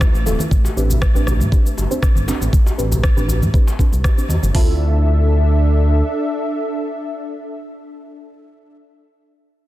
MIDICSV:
0, 0, Header, 1, 6, 480
1, 0, Start_track
1, 0, Tempo, 504202
1, 488, Time_signature, 4, 2, 24, 8
1, 9210, End_track
2, 0, Start_track
2, 0, Title_t, "Analog synth pad"
2, 0, Program_c, 0, 89
2, 0, Note_on_c, 0, 50, 82
2, 0, Note_on_c, 0, 57, 75
2, 0, Note_on_c, 0, 76, 93
2, 451, Note_off_c, 0, 50, 0
2, 488, Note_on_c, 0, 69, 91
2, 4290, Note_off_c, 0, 57, 0
2, 4290, Note_off_c, 0, 69, 0
2, 4290, Note_off_c, 0, 76, 0
2, 4332, Note_on_c, 0, 76, 90
2, 4333, Note_on_c, 0, 62, 82
2, 4333, Note_on_c, 0, 69, 73
2, 8331, Note_off_c, 0, 62, 0
2, 8331, Note_off_c, 0, 76, 0
2, 8332, Note_off_c, 0, 69, 0
2, 9210, End_track
3, 0, Start_track
3, 0, Title_t, "Synth stab"
3, 0, Program_c, 1, 62
3, 0, Note_on_c, 1, 60, 83
3, 0, Note_on_c, 1, 64, 81
3, 0, Note_on_c, 1, 65, 80
3, 0, Note_on_c, 1, 71, 95
3, 222, Note_off_c, 1, 60, 0
3, 222, Note_off_c, 1, 64, 0
3, 222, Note_off_c, 1, 65, 0
3, 222, Note_off_c, 1, 71, 0
3, 248, Note_on_c, 1, 60, 82
3, 248, Note_on_c, 1, 64, 78
3, 248, Note_on_c, 1, 69, 93
3, 249, Note_on_c, 1, 65, 80
3, 471, Note_off_c, 1, 60, 0
3, 471, Note_off_c, 1, 64, 0
3, 471, Note_off_c, 1, 65, 0
3, 471, Note_off_c, 1, 69, 0
3, 729, Note_on_c, 1, 60, 84
3, 729, Note_on_c, 1, 62, 75
3, 729, Note_on_c, 1, 71, 99
3, 730, Note_on_c, 1, 67, 82
3, 951, Note_off_c, 1, 60, 0
3, 951, Note_off_c, 1, 62, 0
3, 951, Note_off_c, 1, 71, 0
3, 952, Note_off_c, 1, 67, 0
3, 1094, Note_on_c, 1, 60, 91
3, 1094, Note_on_c, 1, 71, 108
3, 1095, Note_on_c, 1, 62, 91
3, 1095, Note_on_c, 1, 67, 87
3, 1315, Note_off_c, 1, 60, 0
3, 1315, Note_off_c, 1, 62, 0
3, 1315, Note_off_c, 1, 67, 0
3, 1315, Note_off_c, 1, 71, 0
3, 1447, Note_on_c, 1, 60, 83
3, 1447, Note_on_c, 1, 62, 80
3, 1447, Note_on_c, 1, 67, 78
3, 1447, Note_on_c, 1, 71, 97
3, 1591, Note_off_c, 1, 62, 0
3, 1591, Note_off_c, 1, 71, 0
3, 1592, Note_off_c, 1, 60, 0
3, 1592, Note_off_c, 1, 67, 0
3, 1814, Note_on_c, 1, 67, 77
3, 1815, Note_on_c, 1, 60, 86
3, 1815, Note_on_c, 1, 62, 77
3, 1815, Note_on_c, 1, 72, 95
3, 2141, Note_off_c, 1, 60, 0
3, 2141, Note_off_c, 1, 62, 0
3, 2141, Note_off_c, 1, 67, 0
3, 2141, Note_off_c, 1, 72, 0
3, 2168, Note_on_c, 1, 60, 83
3, 2168, Note_on_c, 1, 67, 76
3, 2168, Note_on_c, 1, 71, 92
3, 2169, Note_on_c, 1, 62, 80
3, 2390, Note_off_c, 1, 67, 0
3, 2391, Note_off_c, 1, 60, 0
3, 2391, Note_off_c, 1, 62, 0
3, 2391, Note_off_c, 1, 71, 0
3, 2647, Note_on_c, 1, 62, 81
3, 2648, Note_on_c, 1, 60, 85
3, 2648, Note_on_c, 1, 67, 80
3, 2648, Note_on_c, 1, 71, 95
3, 2870, Note_off_c, 1, 60, 0
3, 2870, Note_off_c, 1, 62, 0
3, 2871, Note_off_c, 1, 67, 0
3, 2871, Note_off_c, 1, 71, 0
3, 3014, Note_on_c, 1, 62, 84
3, 3014, Note_on_c, 1, 67, 89
3, 3014, Note_on_c, 1, 71, 107
3, 3015, Note_on_c, 1, 60, 92
3, 3235, Note_off_c, 1, 60, 0
3, 3235, Note_off_c, 1, 62, 0
3, 3235, Note_off_c, 1, 67, 0
3, 3235, Note_off_c, 1, 71, 0
3, 3369, Note_on_c, 1, 60, 88
3, 3369, Note_on_c, 1, 67, 77
3, 3369, Note_on_c, 1, 71, 98
3, 3370, Note_on_c, 1, 62, 78
3, 3513, Note_off_c, 1, 60, 0
3, 3513, Note_off_c, 1, 62, 0
3, 3513, Note_off_c, 1, 67, 0
3, 3513, Note_off_c, 1, 71, 0
3, 3609, Note_on_c, 1, 62, 74
3, 3609, Note_on_c, 1, 71, 89
3, 3610, Note_on_c, 1, 60, 79
3, 3610, Note_on_c, 1, 67, 73
3, 3945, Note_off_c, 1, 60, 0
3, 3945, Note_off_c, 1, 62, 0
3, 3945, Note_off_c, 1, 67, 0
3, 3945, Note_off_c, 1, 71, 0
3, 3976, Note_on_c, 1, 62, 70
3, 3976, Note_on_c, 1, 67, 70
3, 3976, Note_on_c, 1, 72, 82
3, 3977, Note_on_c, 1, 60, 73
3, 4316, Note_off_c, 1, 60, 0
3, 4316, Note_off_c, 1, 62, 0
3, 4316, Note_off_c, 1, 67, 0
3, 4316, Note_off_c, 1, 72, 0
3, 4329, Note_on_c, 1, 60, 85
3, 4329, Note_on_c, 1, 64, 77
3, 4329, Note_on_c, 1, 65, 77
3, 4330, Note_on_c, 1, 69, 89
3, 8327, Note_off_c, 1, 65, 0
3, 8328, Note_off_c, 1, 60, 0
3, 8328, Note_off_c, 1, 64, 0
3, 8328, Note_off_c, 1, 69, 0
3, 9210, End_track
4, 0, Start_track
4, 0, Title_t, "Analog synth bass"
4, 0, Program_c, 2, 38
4, 9, Note_on_c, 2, 38, 84
4, 88, Note_off_c, 2, 38, 0
4, 136, Note_on_c, 2, 33, 100
4, 249, Note_on_c, 2, 26, 84
4, 263, Note_off_c, 2, 33, 0
4, 328, Note_off_c, 2, 26, 0
4, 488, Note_on_c, 2, 33, 96
4, 645, Note_off_c, 2, 33, 0
4, 730, Note_on_c, 2, 33, 79
4, 1021, Note_off_c, 2, 33, 0
4, 1096, Note_on_c, 2, 33, 106
4, 1336, Note_on_c, 2, 45, 96
4, 1350, Note_off_c, 2, 33, 0
4, 1407, Note_off_c, 2, 45, 0
4, 1687, Note_on_c, 2, 31, 87
4, 1767, Note_off_c, 2, 31, 0
4, 2055, Note_on_c, 2, 31, 78
4, 2201, Note_off_c, 2, 31, 0
4, 2294, Note_on_c, 2, 33, 80
4, 2366, Note_off_c, 2, 33, 0
4, 2650, Note_on_c, 2, 33, 73
4, 2941, Note_off_c, 2, 33, 0
4, 3014, Note_on_c, 2, 33, 100
4, 3255, Note_on_c, 2, 45, 98
4, 3269, Note_off_c, 2, 33, 0
4, 3326, Note_off_c, 2, 45, 0
4, 3734, Note_on_c, 2, 36, 97
4, 3881, Note_off_c, 2, 36, 0
4, 4089, Note_on_c, 2, 40, 81
4, 4168, Note_off_c, 2, 40, 0
4, 4213, Note_on_c, 2, 31, 91
4, 4286, Note_off_c, 2, 31, 0
4, 4329, Note_on_c, 2, 38, 91
4, 5731, Note_off_c, 2, 38, 0
4, 9210, End_track
5, 0, Start_track
5, 0, Title_t, "Djembe"
5, 3, Note_on_c, 9, 63, 86
5, 99, Note_off_c, 9, 63, 0
5, 251, Note_on_c, 9, 63, 86
5, 346, Note_off_c, 9, 63, 0
5, 615, Note_on_c, 9, 63, 103
5, 710, Note_off_c, 9, 63, 0
5, 856, Note_on_c, 9, 64, 75
5, 951, Note_off_c, 9, 64, 0
5, 1215, Note_on_c, 9, 64, 89
5, 1310, Note_off_c, 9, 64, 0
5, 1689, Note_on_c, 9, 63, 90
5, 1784, Note_off_c, 9, 63, 0
5, 2168, Note_on_c, 9, 63, 88
5, 2171, Note_on_c, 9, 62, 76
5, 2263, Note_off_c, 9, 63, 0
5, 2266, Note_off_c, 9, 62, 0
5, 2536, Note_on_c, 9, 63, 92
5, 2631, Note_off_c, 9, 63, 0
5, 2776, Note_on_c, 9, 64, 85
5, 2871, Note_off_c, 9, 64, 0
5, 3124, Note_on_c, 9, 64, 89
5, 3220, Note_off_c, 9, 64, 0
5, 3497, Note_on_c, 9, 62, 66
5, 3592, Note_off_c, 9, 62, 0
5, 3846, Note_on_c, 9, 63, 81
5, 3941, Note_off_c, 9, 63, 0
5, 4087, Note_on_c, 9, 63, 84
5, 4182, Note_off_c, 9, 63, 0
5, 9210, End_track
6, 0, Start_track
6, 0, Title_t, "Drums"
6, 4, Note_on_c, 9, 63, 65
6, 9, Note_on_c, 9, 36, 124
6, 9, Note_on_c, 9, 37, 104
6, 15, Note_on_c, 9, 82, 88
6, 99, Note_off_c, 9, 63, 0
6, 104, Note_off_c, 9, 36, 0
6, 104, Note_off_c, 9, 37, 0
6, 110, Note_off_c, 9, 82, 0
6, 128, Note_on_c, 9, 62, 36
6, 142, Note_on_c, 9, 82, 49
6, 223, Note_off_c, 9, 62, 0
6, 237, Note_off_c, 9, 82, 0
6, 247, Note_on_c, 9, 63, 94
6, 254, Note_on_c, 9, 82, 90
6, 342, Note_off_c, 9, 63, 0
6, 349, Note_off_c, 9, 82, 0
6, 369, Note_on_c, 9, 62, 51
6, 374, Note_on_c, 9, 63, 109
6, 382, Note_on_c, 9, 82, 52
6, 465, Note_off_c, 9, 62, 0
6, 469, Note_off_c, 9, 63, 0
6, 477, Note_off_c, 9, 82, 0
6, 489, Note_on_c, 9, 36, 119
6, 496, Note_on_c, 9, 82, 91
6, 584, Note_off_c, 9, 36, 0
6, 591, Note_off_c, 9, 82, 0
6, 623, Note_on_c, 9, 82, 55
6, 718, Note_off_c, 9, 82, 0
6, 735, Note_on_c, 9, 62, 46
6, 737, Note_on_c, 9, 82, 54
6, 830, Note_off_c, 9, 62, 0
6, 832, Note_off_c, 9, 82, 0
6, 853, Note_on_c, 9, 63, 60
6, 853, Note_on_c, 9, 64, 74
6, 863, Note_on_c, 9, 82, 93
6, 948, Note_off_c, 9, 63, 0
6, 948, Note_off_c, 9, 64, 0
6, 958, Note_off_c, 9, 82, 0
6, 968, Note_on_c, 9, 37, 105
6, 969, Note_on_c, 9, 36, 118
6, 975, Note_on_c, 9, 82, 53
6, 1064, Note_off_c, 9, 36, 0
6, 1064, Note_off_c, 9, 37, 0
6, 1070, Note_off_c, 9, 82, 0
6, 1088, Note_on_c, 9, 63, 65
6, 1102, Note_on_c, 9, 82, 52
6, 1184, Note_off_c, 9, 63, 0
6, 1197, Note_off_c, 9, 82, 0
6, 1206, Note_on_c, 9, 64, 81
6, 1209, Note_on_c, 9, 37, 60
6, 1214, Note_on_c, 9, 62, 48
6, 1215, Note_on_c, 9, 82, 89
6, 1301, Note_off_c, 9, 64, 0
6, 1304, Note_off_c, 9, 37, 0
6, 1309, Note_off_c, 9, 62, 0
6, 1311, Note_off_c, 9, 82, 0
6, 1331, Note_on_c, 9, 64, 83
6, 1334, Note_on_c, 9, 63, 107
6, 1342, Note_on_c, 9, 82, 54
6, 1426, Note_off_c, 9, 64, 0
6, 1429, Note_off_c, 9, 63, 0
6, 1437, Note_off_c, 9, 82, 0
6, 1448, Note_on_c, 9, 36, 119
6, 1455, Note_on_c, 9, 82, 54
6, 1544, Note_off_c, 9, 36, 0
6, 1550, Note_off_c, 9, 82, 0
6, 1574, Note_on_c, 9, 62, 34
6, 1582, Note_on_c, 9, 82, 53
6, 1669, Note_off_c, 9, 62, 0
6, 1677, Note_off_c, 9, 82, 0
6, 1695, Note_on_c, 9, 82, 52
6, 1790, Note_off_c, 9, 82, 0
6, 1819, Note_on_c, 9, 62, 47
6, 1822, Note_on_c, 9, 82, 54
6, 1914, Note_off_c, 9, 62, 0
6, 1917, Note_off_c, 9, 82, 0
6, 1928, Note_on_c, 9, 36, 118
6, 1929, Note_on_c, 9, 37, 95
6, 1935, Note_on_c, 9, 82, 88
6, 2023, Note_off_c, 9, 36, 0
6, 2024, Note_off_c, 9, 37, 0
6, 2030, Note_off_c, 9, 82, 0
6, 2051, Note_on_c, 9, 63, 99
6, 2059, Note_on_c, 9, 62, 39
6, 2063, Note_on_c, 9, 82, 50
6, 2146, Note_off_c, 9, 63, 0
6, 2154, Note_off_c, 9, 62, 0
6, 2158, Note_off_c, 9, 82, 0
6, 2175, Note_on_c, 9, 82, 93
6, 2271, Note_off_c, 9, 82, 0
6, 2297, Note_on_c, 9, 62, 45
6, 2303, Note_on_c, 9, 82, 50
6, 2392, Note_off_c, 9, 62, 0
6, 2398, Note_off_c, 9, 82, 0
6, 2408, Note_on_c, 9, 36, 120
6, 2416, Note_on_c, 9, 82, 88
6, 2504, Note_off_c, 9, 36, 0
6, 2511, Note_off_c, 9, 82, 0
6, 2543, Note_on_c, 9, 82, 50
6, 2638, Note_off_c, 9, 82, 0
6, 2654, Note_on_c, 9, 62, 47
6, 2655, Note_on_c, 9, 82, 53
6, 2749, Note_off_c, 9, 62, 0
6, 2751, Note_off_c, 9, 82, 0
6, 2772, Note_on_c, 9, 63, 53
6, 2781, Note_on_c, 9, 64, 79
6, 2783, Note_on_c, 9, 82, 91
6, 2867, Note_off_c, 9, 63, 0
6, 2876, Note_off_c, 9, 64, 0
6, 2878, Note_off_c, 9, 82, 0
6, 2889, Note_on_c, 9, 36, 115
6, 2889, Note_on_c, 9, 37, 99
6, 2896, Note_on_c, 9, 82, 50
6, 2984, Note_off_c, 9, 36, 0
6, 2984, Note_off_c, 9, 37, 0
6, 2991, Note_off_c, 9, 82, 0
6, 3021, Note_on_c, 9, 63, 60
6, 3023, Note_on_c, 9, 82, 51
6, 3116, Note_off_c, 9, 63, 0
6, 3118, Note_off_c, 9, 82, 0
6, 3130, Note_on_c, 9, 62, 47
6, 3135, Note_on_c, 9, 82, 88
6, 3225, Note_off_c, 9, 62, 0
6, 3231, Note_off_c, 9, 82, 0
6, 3255, Note_on_c, 9, 63, 88
6, 3261, Note_on_c, 9, 82, 52
6, 3350, Note_off_c, 9, 63, 0
6, 3357, Note_off_c, 9, 82, 0
6, 3369, Note_on_c, 9, 36, 113
6, 3374, Note_on_c, 9, 82, 52
6, 3464, Note_off_c, 9, 36, 0
6, 3469, Note_off_c, 9, 82, 0
6, 3500, Note_on_c, 9, 62, 35
6, 3500, Note_on_c, 9, 82, 49
6, 3595, Note_off_c, 9, 62, 0
6, 3596, Note_off_c, 9, 82, 0
6, 3609, Note_on_c, 9, 36, 59
6, 3615, Note_on_c, 9, 82, 50
6, 3704, Note_off_c, 9, 36, 0
6, 3710, Note_off_c, 9, 82, 0
6, 3737, Note_on_c, 9, 62, 48
6, 3741, Note_on_c, 9, 82, 53
6, 3832, Note_off_c, 9, 62, 0
6, 3836, Note_off_c, 9, 82, 0
6, 3844, Note_on_c, 9, 63, 59
6, 3849, Note_on_c, 9, 36, 111
6, 3849, Note_on_c, 9, 37, 92
6, 3855, Note_on_c, 9, 82, 84
6, 3939, Note_off_c, 9, 63, 0
6, 3944, Note_off_c, 9, 37, 0
6, 3945, Note_off_c, 9, 36, 0
6, 3951, Note_off_c, 9, 82, 0
6, 3973, Note_on_c, 9, 62, 35
6, 3981, Note_on_c, 9, 82, 48
6, 4068, Note_off_c, 9, 62, 0
6, 4077, Note_off_c, 9, 82, 0
6, 4080, Note_on_c, 9, 63, 87
6, 4095, Note_on_c, 9, 82, 86
6, 4175, Note_off_c, 9, 63, 0
6, 4190, Note_off_c, 9, 82, 0
6, 4215, Note_on_c, 9, 63, 106
6, 4221, Note_on_c, 9, 62, 48
6, 4221, Note_on_c, 9, 82, 51
6, 4310, Note_off_c, 9, 63, 0
6, 4316, Note_off_c, 9, 62, 0
6, 4316, Note_off_c, 9, 82, 0
6, 4328, Note_on_c, 9, 46, 81
6, 4329, Note_on_c, 9, 36, 97
6, 4423, Note_off_c, 9, 46, 0
6, 4424, Note_off_c, 9, 36, 0
6, 9210, End_track
0, 0, End_of_file